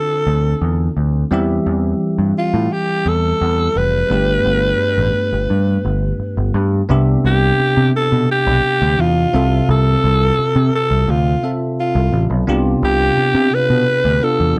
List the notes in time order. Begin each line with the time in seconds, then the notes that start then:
Already playing: D3 C4 D4 F4 A4
0.27 D2
0.62 E2
0.97 D2
1.31 E2 E3 G3 C4 G4 E5
1.66 E2
2.19 G2
2.38 F4
2.54 A2
2.73 G4
3.06 E2 A4
3.41 E2
3.76 F1 B4
4.10 G1 G2 A3 B3 D4 G4
4.45 G1
4.98 A1
5.33 G1
5.50 G2
5.85 G1
6.20 muted picked electric bass stroke
6.37 G1
6.54 G2
6.89 C2 C3 B3 D4 G4 E5
7.25 C2 G4
7.60 muted picked electric bass stroke
7.77 C3
7.96 A4
8.12 B2
8.31 G4
8.47 B1
8.82 D2
8.99 E2 F4
9.33 C2 C3 C4 F4 A4 E5
9.69 C2 A4
10.04 C2
10.39 muted picked electric bass stroke
10.56 C3
10.75 A4
10.91 C2
11.08 D2 F4
11.43 C4 F4 A4 E5
11.80 F4
11.95 C2
12.13 A1
12.30 B1
12.47 C2 C3 B3 D4 F4 G4
12.83 C2 G4
13.17 muted picked electric bass stroke
13.35 C3
13.54 B4
13.70 B2
14.05 D2
14.22 B3 D4 F4 A4
14.40 E2